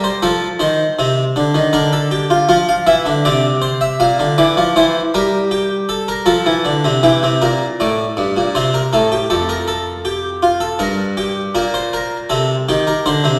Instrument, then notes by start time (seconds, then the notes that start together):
harpsichord
0.04 C5
0.23 F3 A4
0.60 D#3 C5
0.99 C3
1.36 D3
1.55 D#3
1.73 D3 A#4
1.93 A4
2.11 G4
2.30 F4
2.49 F3 F4
2.69 F5
2.87 E3 E5
3.06 D3
3.25 C3 D5
3.62 C5
3.81 E5
4.00 A#2 F5
4.20 D3
4.38 E3 D5
4.57 F3
4.76 E3 C5
5.14 G3 A#4
5.51 G4
5.89 A4
6.08 A#4
6.26 F3 A4
6.46 E3
6.65 D3
6.84 C3
7.03 E3 G4
7.23 C3
7.42 A#2 A#4
7.80 A2 D5
8.17 G2
8.37 A#2
8.55 C3 C5
8.74 A#4
8.93 A2 A4
9.12 G4
9.30 F2 A4
9.49 A#4
9.68 A4
10.05 G4
10.43 F4
10.60 A4
10.79 G2 A#4
11.17 G4
11.55 A#2 A#4
11.74 C5
11.93 A#4
12.30 C3 A4
12.69 D#3 G4
12.87 A#4
13.06 D3 C5
13.24 C3